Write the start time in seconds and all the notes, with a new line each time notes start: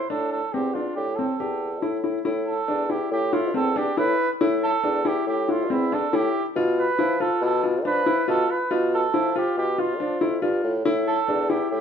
Already playing: C5
0.10 A2 D4 A4
0.32 A4
0.53 E2 C4 G4
0.74 D4 F4
0.96 A2 G4
1.16 C4 A4
1.40 E2 G4
1.82 A2 E4
2.04 E4
2.25 A2 E4
2.48 A4
2.68 E2 D4
2.90 E4 G4
3.11 A2 G4
3.33 E4 F4
3.54 E2 C4 A4
3.76 D4 G4
3.97 A2 E4 B4
4.41 A2 E4
4.63 A4
4.83 E2 D4
5.05 E4 G4
5.27 A2 G4
5.49 E4 F4
5.69 E2 C4 E4
5.92 D4 A4
6.13 A2 E4 G4
6.55 B2 F4
6.79 B4
6.98 F3 E4
7.20 F4 A4
7.42 B2 A4
7.63 F4
7.85 F3 D4 B4
8.06 E4
8.28 B2 F4 A4
8.51 B4
8.71 B2 F4
8.94 A4
9.14 F3 E4
9.36 F4 G4
9.57 B2 G4
9.78 F4
10.00 F3 D4
10.21 F2 E4
10.42 G2 F4
10.64 A2
10.85 A2 E4
11.07 A4
11.28 E2 D4
11.50 E4 G4
11.71 A2 G4